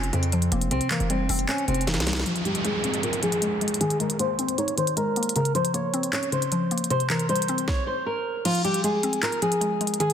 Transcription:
Already playing: F1 C#3 F3 A#3 C4 F4
0.03 closed hi-hat
0.13 F2 C#3 C4, closed hi-hat
0.23 closed hi-hat
0.32 F3, closed hi-hat
0.42 closed hi-hat
0.52 F1 A#3, closed hi-hat
0.61 closed hi-hat
0.71 C2 C3 C4, closed hi-hat
0.81 closed hi-hat
0.91 E3 A#3, clap, closed hi-hat
1.00 F1, closed hi-hat
1.10 G3 C4, closed hi-hat
1.29 F1 C4, closed hi-hat, open hi-hat
1.39 closed hi-hat
1.48 C#4 C5, clap, closed hi-hat
1.58 closed hi-hat
1.68 F1 C3 C4, closed hi-hat
1.74 closed hi-hat
1.81 closed hi-hat
1.87 E3 A#3, snare, closed hi-hat
1.94 C2, snare, closed hi-hat
2.00 snare, closed hi-hat
2.07 G3, snare, closed hi-hat
2.13 snare, closed hi-hat
2.20 snare
2.26 F3 F4, closed hi-hat, downlifter
2.36 closed hi-hat
2.45 G3 G4, closed hi-hat
2.55 closed hi-hat
2.65 G#3 G#4, closed hi-hat
2.84 C4, closed hi-hat
2.94 closed hi-hat
3.03 F4 A#4, closed hi-hat
3.13 closed hi-hat
3.23 F3 G#4, closed hi-hat
3.32 closed hi-hat
3.42 G#3, closed hi-hat
3.61 G#3, closed hi-hat
3.68 closed hi-hat
3.74 closed hi-hat
3.81 D#3 G#4, closed hi-hat
3.90 closed hi-hat
4.00 G#3 A#4, closed hi-hat
4.10 closed hi-hat
4.19 A#3 C5, closed hi-hat
4.39 C4, closed hi-hat
4.49 closed hi-hat
4.58 D#4 C#5, closed hi-hat
4.68 closed hi-hat
4.78 D#3 C5, closed hi-hat
4.87 closed hi-hat
4.97 G#3 A#4, closed hi-hat
5.16 A#3, closed hi-hat
5.23 closed hi-hat
5.29 closed hi-hat
5.36 C#3 A#4, closed hi-hat
5.45 closed hi-hat
5.55 F3 C5, closed hi-hat
5.65 closed hi-hat
5.74 A#3 C#5, closed hi-hat
5.94 C4, closed hi-hat
6.03 closed hi-hat
6.13 C#4 C#5, clap, closed hi-hat
6.23 closed hi-hat
6.32 C#3 C5, closed hi-hat
6.42 closed hi-hat
6.52 F3, closed hi-hat
6.71 A#3, closed hi-hat
6.78 closed hi-hat
6.84 closed hi-hat
6.90 C3 C5, closed hi-hat
7.00 closed hi-hat
7.10 E3 A#4, clap, closed hi-hat
7.19 closed hi-hat
7.29 G3 C5, closed hi-hat
7.36 closed hi-hat
7.42 closed hi-hat
7.48 C4, closed hi-hat
7.58 closed hi-hat
7.68 C#5, kick, snare
7.87 C5
8.06 A#4
8.45 F3 F4, closed hi-hat, crash
8.55 closed hi-hat
8.65 G3 G4, closed hi-hat
8.74 closed hi-hat
8.84 G#3 G#4, closed hi-hat
9.03 C4, closed hi-hat
9.13 closed hi-hat
9.23 F4 A#4, clap, closed hi-hat
9.32 closed hi-hat
9.42 F3 G#4, closed hi-hat
9.52 closed hi-hat
9.61 G#3, closed hi-hat
9.81 G#3, closed hi-hat
9.87 closed hi-hat
9.94 closed hi-hat
10.00 D#3 G#4, closed hi-hat
10.10 closed hi-hat

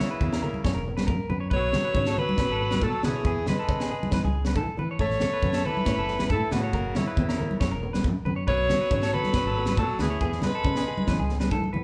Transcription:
0.00 C#3 E4 C#5, snare
0.11 B4
0.21 E2 B3, kick, low conga
0.32 A#4, snare
0.43 A#3 A#4, low conga
0.54 high conga
0.64 F#2 C#4 C#5, kick, snare
0.74 E1 A#4
0.88 B3
0.97 B4, snare, high conga
1.07 F#2 A#3 A#4, kick
1.29 F#2 B3 B4, low conga
1.40 C#5
1.50 B1 B3 B4 C#5, kick
1.56 F#3
1.73 B3 C#5, snare, high conga, low conga
1.85 B4
1.94 G#2 C#4, kick, low conga
2.05 A4, snare
2.17 F#3 B3 B4, muted clean electric guitar stroke, low conga
2.29 high conga
2.37 B2 C#4 B4, kick, snare
2.49 G#1 A4
2.61 B3
2.71 B4, snare, high conga
2.81 B2 F#3 A3 A4, kick
3.03 B2 E3 B3 G#4 B4, snare, low conga
3.16 C#5
3.25 E2 B3 G#4, kick
3.46 G#3 B3 B4, snare, high conga, low conga
3.59 A4
3.68 C#3 C#4, kick
3.80 G#4, snare
3.90 B3 G#4
4.03 high conga
4.11 E3 C#4 B4, kick, snare, high conga
4.24 C#2 G#4, high conga
4.45 B4, snare, high conga
4.55 E3 A3 A4, kick
4.77 E3 B3 B4, low conga
4.91 C#5
4.99 A1 A3 C#5, muted clean electric guitar stroke, kick
5.11 snare
5.20 A3 C#5, snare, high conga, low conga
5.33 B4
5.42 F#2 B3, kick, low conga
5.53 A4, snare
5.65 E3 A3 A4 B4, low conga
5.77 high conga
5.85 A2 C#4 C#5, kick, snare
5.98 F#1 A4
6.08 B3, snare
6.19 B4, snare, high conga
6.30 A2 E3 A3 A4, kick
6.51 A2 C#3 B3 F#4 B4, snare, low conga
6.63 C#5
6.73 F#1 A#3 A#4, kick
6.95 E4 C#5, muted nylon-string guitar stroke, snare, high conga, low conga
7.00 C#3
7.07 B4
7.17 E2 B3, kick, low conga
7.29 A#4, snare
7.38 A#3 A#4, low conga
7.51 high conga
7.60 F#2 C#4 C#5, kick, snare
7.71 E1 A#4
7.83 B3
7.93 B4, snare, high conga
8.04 F#2 A#3, kick
8.25 F#2 B3 B4, low conga
8.36 C#5
8.47 B1 F#3 B3 B4 C#5, kick
8.69 B3 C#5, snare, high conga, low conga
8.81 B4
8.91 G#2 C#4, kick, low conga
9.02 A4, snare
9.13 F#3 B3 A4 B4, low conga
9.24 snare, high conga
9.33 B2 C#4 B4, kick, snare
9.46 G#1 A4
9.58 B3
9.66 B4, snare, high conga
9.77 B2 F#3 A3 A4, kick
9.99 D2 E3 B3 G#4 B4, snare, low conga
10.10 C#5
10.21 E2 B3 G#4, kick
10.32 snare
10.42 B3 B4, snare, high conga, low conga
10.46 G#3 B4
10.55 A4
10.63 C#3 C#4, kick, low conga
10.76 G#4, snare
10.88 B3 G#4
10.98 high conga
11.07 E3 C#4 B4, kick, snare, high conga
11.18 C#2 G#4, high conga
11.29 B3, snare
11.40 B4, snare, high conga
11.51 E3 A3 A4, kick, high conga
11.64 high conga
11.73 E3 B3 B4, low conga

